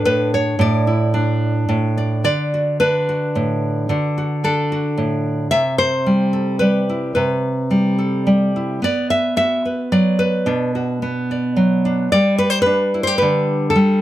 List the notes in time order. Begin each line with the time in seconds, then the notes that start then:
Already playing: D4 A4
0.05 A2 B4
0.34 C#5
0.59 A2 D5
0.87 E4
1.14 D4
1.69 A2
1.98 D5
2.24 D3 D5
2.54 F#4
2.80 D4 B4
3.09 F#4
3.35 A2
3.89 D3 F#4
4.18 F#4
4.44 D4 A4
4.72 F#4
4.98 A2
5.51 C3 E5
5.78 C5
6.06 G3
6.33 A4
6.59 G3 B4
6.89 E4
7.15 C3 B4
7.71 G3
7.99 A4
8.27 G3
8.56 E4
8.82 B3 D5
9.10 E5
9.37 F#4 E5
9.65 B4
9.92 F#3 D5
10.19 B4
10.46 B2 D4
10.75 F#4
11.02 B3
11.31 D5
11.56 F#3
11.85 D4
12.12 G3 D5
12.38 B4
12.50 C5
12.62 B4
12.66 D4
12.94 E4
13.03 G4 C5
13.18 D3 B4
13.70 A4
13.76 G3